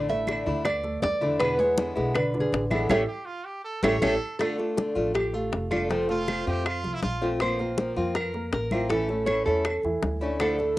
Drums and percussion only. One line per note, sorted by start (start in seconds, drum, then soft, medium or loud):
0.09 high bongo soft
0.09 high conga soft
0.27 high bongo medium
0.27 high conga medium
0.27 claves medium
0.65 high bongo medium
0.65 high conga soft
0.65 claves medium
0.83 high bongo soft
0.83 high conga soft
1.02 high bongo medium
1.02 low bongo medium
1.02 high conga medium
1.22 high bongo soft
1.22 high conga soft
1.40 high bongo medium
1.40 high conga soft
1.40 claves medium
1.59 high bongo soft
1.59 high conga soft
1.78 high bongo medium
1.78 high conga medium
1.97 high bongo soft
2.15 high bongo medium
2.15 high conga soft
2.15 claves medium
2.34 high bongo soft
2.34 high conga soft
2.53 high bongo medium
2.53 low bongo medium
2.53 high conga soft
2.71 high conga medium
2.71 claves medium
2.89 low bongo loud
2.89 high conga loud
2.89 claves medium
3.83 low bongo loud
3.83 high conga medium
3.83 claves loud
4.02 low bongo medium
4.02 high conga medium
4.02 claves loud
4.40 high bongo medium
4.40 high conga soft
4.40 claves medium
4.59 high bongo soft
4.59 high conga soft
4.77 high bongo medium
4.77 high conga loud
4.96 high bongo soft
5.15 high bongo medium
5.15 high conga soft
5.15 claves medium
5.34 high bongo soft
5.34 high conga soft
5.53 high bongo medium
5.53 low bongo medium
5.53 high conga soft
5.72 high conga medium
5.72 claves medium
5.90 high bongo medium
5.90 high conga soft
6.09 high bongo soft
6.09 high conga soft
6.28 high bongo medium
6.28 high conga medium
6.28 claves medium
6.66 high bongo medium
6.66 high conga soft
6.66 claves medium
6.84 high bongo soft
6.84 high conga soft
7.02 high bongo medium
7.02 low bongo medium
7.02 high conga medium
7.21 high bongo soft
7.21 high conga soft
7.40 high bongo medium
7.40 high conga soft
7.40 claves medium
7.59 high bongo soft
7.59 high conga soft
7.78 high bongo medium
7.78 high conga medium
7.96 high bongo soft
8.15 high bongo medium
8.15 high conga soft
8.15 claves medium
8.34 high bongo soft
8.34 high conga soft
8.53 high bongo medium
8.53 low bongo medium
8.53 high conga soft
8.71 high conga medium
8.71 claves medium
8.90 high bongo medium
8.90 high conga soft
9.08 high bongo soft
9.08 high conga soft
9.27 high bongo medium
9.27 high conga medium
9.27 claves medium
9.65 high bongo medium
9.65 high conga soft
9.65 claves medium
9.83 high bongo soft
9.83 high conga soft
10.02 high bongo medium
10.02 low bongo medium
10.02 high conga medium
10.21 high bongo soft
10.21 high conga soft
10.40 high bongo medium
10.40 high conga soft
10.40 claves medium
10.59 high bongo soft
10.59 high conga soft